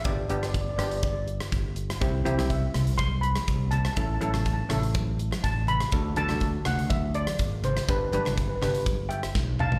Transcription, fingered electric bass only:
X:1
M:4/4
L:1/8
Q:1/4=123
K:Gmix
V:1 name="Fingered electric bass" clef=bass
G,,, G,,,2 G,,,3 G,,,2 | C,, C,,2 C,,3 C,,2 | A,,, A,,,2 A,,,3 A,,,2 | D,, D,,2 D,,3 _A,,,2 |
G,,, G,,,2 G,,,3 B,,,2 |]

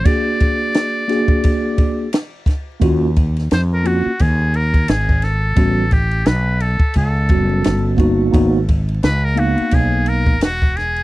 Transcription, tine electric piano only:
X:1
M:4/4
L:1/8
Q:"Swing 16ths" 1/4=87
K:Bbm
V:1 name="Tine electric piano"
[B,=D^FA]3 [B,DFA]3 z2 | [B,DFG] z2 [B,DFG] z4 | [=G,=B,^C^F] z4 [G,B,CF]2 [_B,=B,EF] | [B,_CEG] z2 [B,CEf]3 z2 |]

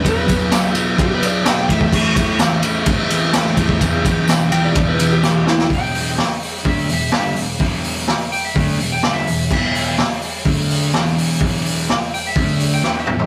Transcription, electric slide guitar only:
X:1
M:4/4
L:1/16
Q:1/4=127
K:Alyd
V:1 name="Electric slide guitar"
B4 z4 =G B =d2 =g2 e2- | e8- e2 z6 | z6 =g =d2 B2 =G2 G E2 | =g8 e2 e2 e2 z2 |
z6 =g e4 g2 e3 | e12 z4 | z6 =g e4 g2 e3 |]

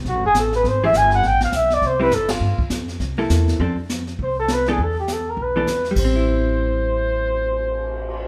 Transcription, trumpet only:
X:1
M:4/4
L:1/16
Q:"Swing" 1/4=203
K:Am
V:1 name="Trumpet"
^F2 ^G2 A2 B2 ^B2 e2 ^g2 ^f2 | g2 f2 e2 d2 c2 B2 A2 F2- | F2 z12 z2 | z8 c2 A2 B2 ^G2 |
A2 G2 A2 _B2 =B6- B z | c16- | c16 |]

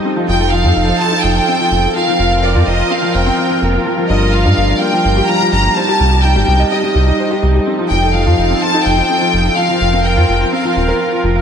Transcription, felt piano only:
X:1
M:4/4
L:1/16
Q:1/4=126
K:Fmix
V:1 name="Felt piano"
C F, F, A F, F, E c F E F, E C F, F, A | F, F, F f B F F, F C F, c C F, F, B, B | F, F, D B, F D F, D B, F, F, G F, F, D B, | c G G, G E G, G, e G, G, G E c G G, G |
C F, F, A F, F, E C F E F, E C F, F, A | F, F, F C B F F, F C F, F, B F F F, f |]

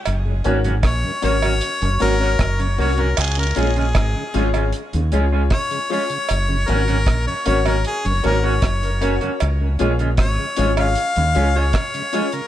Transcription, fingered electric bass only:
X:1
M:4/4
L:1/16
Q:1/4=77
K:Db
V:1 name="Fingered electric bass" clef=bass
G,,,2 A,,,2 B,,, z A,,,2 z G,,, A,,,2 G,,,2 C,,2 | D,,2 B,,,2 A,,, z A,,,2 z E,, D,,2 z4 | G,,,2 A,,,2 B,,, z A,,,2 z G,,, A,,,2 G,,,3 z | D,,2 B,,,2 A,,, z A,,,2 z E,, D,,2 z4 |]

